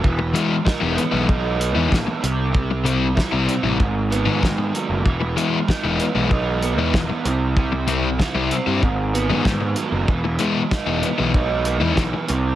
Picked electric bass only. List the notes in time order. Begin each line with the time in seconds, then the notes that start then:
0.04 E1
0.82 E1
1.13 B1
1.76 E2
1.92 A#1
2.23 C2
3.32 C2
3.63 A1
3.80 G#1
4.26 G#2
4.42 G#2
4.89 F#1
5.06 E1
5.84 E1
6.15 B1
6.78 E2
6.94 E1
7.25 C2
8.35 C2
8.67 G2
8.83 G#1
9.30 G#2
9.46 G#2
9.92 F#1
10.08 E1
10.87 E1
11.20 B1
11.82 E2
11.97 B1
12.29 C2